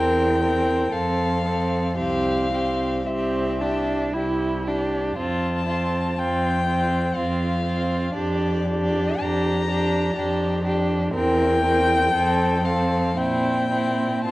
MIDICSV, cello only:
0, 0, Header, 1, 2, 480
1, 0, Start_track
1, 0, Key_signature, -1, "major"
1, 0, Tempo, 1025641
1, 924, Time_signature, 3, 2, 24, 8
1, 924, Tempo, 1081081
1, 1884, Tempo, 1039861
1, 2364, Tempo, 991736
1, 3804, Tempo, 1047120
1, 4284, Tempo, 980392
1, 5724, Tempo, 1032702
1, 6204, Tempo, 1083032
1, 6709, End_track
2, 0, Start_track
2, 0, Title_t, "Cello"
2, 0, Program_c, 0, 42
2, 0, Note_on_c, 0, 40, 52
2, 381, Note_off_c, 0, 40, 0
2, 436, Note_on_c, 0, 41, 44
2, 866, Note_off_c, 0, 41, 0
2, 924, Note_on_c, 0, 36, 46
2, 1348, Note_off_c, 0, 36, 0
2, 1407, Note_on_c, 0, 36, 40
2, 1830, Note_off_c, 0, 36, 0
2, 1887, Note_on_c, 0, 36, 40
2, 2311, Note_off_c, 0, 36, 0
2, 2366, Note_on_c, 0, 41, 43
2, 2796, Note_off_c, 0, 41, 0
2, 2856, Note_on_c, 0, 41, 44
2, 3275, Note_off_c, 0, 41, 0
2, 3331, Note_on_c, 0, 41, 42
2, 3748, Note_off_c, 0, 41, 0
2, 3806, Note_on_c, 0, 41, 51
2, 4230, Note_off_c, 0, 41, 0
2, 4285, Note_on_c, 0, 41, 47
2, 4701, Note_off_c, 0, 41, 0
2, 4754, Note_on_c, 0, 41, 49
2, 5177, Note_off_c, 0, 41, 0
2, 5234, Note_on_c, 0, 40, 60
2, 5665, Note_off_c, 0, 40, 0
2, 5724, Note_on_c, 0, 41, 53
2, 6145, Note_off_c, 0, 41, 0
2, 6204, Note_on_c, 0, 46, 50
2, 6626, Note_off_c, 0, 46, 0
2, 6686, Note_on_c, 0, 45, 49
2, 6709, Note_off_c, 0, 45, 0
2, 6709, End_track
0, 0, End_of_file